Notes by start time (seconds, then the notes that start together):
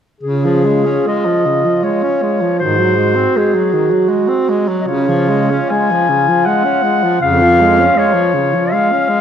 0.21 C#3 F4 G#4
0.45 F3
0.65 G#3
0.86 C#4
1.06 G#3 D#5
1.26 F3
1.46 C#3
1.65 F3
1.84 G#3 C#5
2.03 C#4
2.22 G#3
2.41 F3
2.59 G#2 D#3 F#4 C5
2.79 F#3
2.96 G#3
3.15 C4
3.36 G#3 G#4
3.54 F#3
3.73 D#3
3.91 F#3
4.09 G#3
4.28 C4
4.49 G#3
4.68 F#3
4.81 D#5
4.86 C#3 F4 C#5
5.08 F3
5.30 G#3
5.51 C#4
5.69 G#3 G#5
5.91 F3
6.09 C#3
6.29 F3
6.45 G#3 F#5
6.64 C#4
6.83 G#3
7.04 F3
7.21 F2 C#3 F5
7.41 F3
7.61 G#3
7.79 C#4
7.96 G#3 C#5
8.14 F3
8.34 C#3
8.54 F3
8.72 G#3 F5
8.92 C#4
9.09 G#3